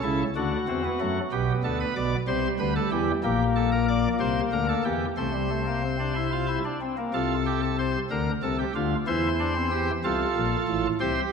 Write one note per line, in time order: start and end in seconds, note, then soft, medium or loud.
0.00 0.23 C#2 medium
0.00 0.24 C#3 medium
0.00 0.23 E4 medium
0.00 0.23 A4 medium
0.36 0.56 D2 medium
0.36 0.56 D3 medium
0.36 0.56 D4 medium
0.36 1.19 F#4 medium
0.68 0.88 E2 medium
0.68 0.88 E3 medium
0.68 0.82 C4 medium
0.84 0.98 B3 medium
1.00 1.20 F#2 medium
1.00 1.20 F#3 medium
1.00 1.20 A3 medium
1.32 1.52 B1 medium
1.32 1.52 B2 medium
1.32 2.14 B3 medium
1.32 1.52 G4 medium
1.64 1.84 D2 medium
1.64 1.84 D3 medium
1.64 1.78 A4 medium
1.80 1.94 B4 medium
1.96 2.16 B1 medium
1.96 2.16 B2 medium
1.96 2.16 D5 medium
2.28 2.47 C2 medium
2.28 2.47 C3 medium
2.28 3.10 G3 medium
2.28 2.47 C5 medium
2.59 2.79 D2 medium
2.59 2.79 D3 medium
2.59 2.73 B4 medium
2.76 2.89 A4 medium
2.91 3.11 E2 medium
2.91 3.11 E3 medium
2.91 3.11 G4 medium
3.24 4.07 A#1 medium
3.24 4.07 A#2 medium
3.24 4.91 A#3 medium
3.24 3.44 G4 medium
3.56 3.69 A4 medium
3.72 3.86 A#4 medium
3.88 4.08 D5 medium
4.20 4.40 C2 medium
4.20 4.40 C3 medium
4.20 4.40 C5 medium
4.52 4.73 D2 medium
4.52 4.73 D3 medium
4.52 4.67 A#4 medium
4.69 4.83 A4 medium
4.85 5.05 E2 medium
4.85 5.05 E3 medium
4.85 5.05 G4 medium
5.17 6.58 C2 medium
5.17 6.58 C3 medium
5.17 5.32 A3 medium
5.17 6.58 C5 medium
5.33 5.48 G3 medium
5.50 5.64 A3 medium
5.67 5.81 A#3 medium
5.83 5.97 C4 medium
5.99 6.13 D4 medium
6.16 6.30 E4 medium
6.32 6.46 F4 medium
6.48 6.62 E4 medium
6.65 6.79 D4 medium
6.81 6.95 C4 medium
6.98 7.12 A#3 medium
7.13 7.97 C2 medium
7.13 7.97 C3 medium
7.13 7.34 F4 medium
7.13 7.61 A4 medium
7.46 7.60 G4 medium
7.63 7.76 A4 medium
7.79 7.99 C5 medium
8.11 8.30 D2 medium
8.11 8.31 D3 medium
8.11 8.31 A#4 medium
8.43 8.63 C2 medium
8.43 8.63 C3 medium
8.43 8.56 A4 medium
8.59 8.73 G4 medium
8.75 8.95 D2 medium
8.75 8.95 D3 medium
8.75 8.95 F4 medium
9.07 9.90 E2 medium
9.07 9.90 E3 medium
9.07 9.27 E4 medium
9.07 9.90 C5 medium
9.40 9.53 D4 medium
9.56 9.69 C4 medium
9.71 9.91 G4 medium
10.04 10.24 C2 medium
10.04 10.24 C3 medium
10.04 10.87 F4 medium
10.04 10.87 A4 medium
10.36 10.56 A#1 medium
10.36 10.56 A#2 medium
10.68 10.88 A1 medium
10.68 10.88 A2 medium
11.00 11.20 C2 medium
11.00 11.20 C3 medium
11.00 11.32 G4 medium
11.00 11.20 C5 loud